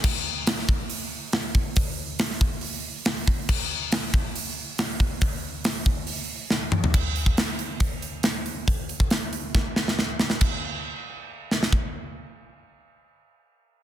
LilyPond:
\new DrumStaff \with { instrumentName = "Drums" } \drummode { \time 4/4 \tempo 4 = 139 <cymc bd>4 <hho sn>16 sn16 bd8 hho4 <hho sn>8 bd8 | <hho bd>4 <hho sn>16 sn16 bd8 hho4 <hho sn>8 bd8 | <cymc bd>4 <hho sn>8 bd8 hho4 <hho sn>8 bd8 | <hho bd>4 <hho sn>8 bd8 hho4 sn8 toml16 tomfh16 |
<cymc bd>8 hho16 bd16 <hho sn>8 hho8 <hho bd>8 hho8 <hho sn>8 hho8 | <hho bd>8 hho16 bd16 <hho sn>8 hho8 <bd sn>8 sn16 sn16 sn8 sn16 sn16 | <cymc bd>4 r4 r8 sn16 sn16 bd4 | r4 r4 r4 r4 | }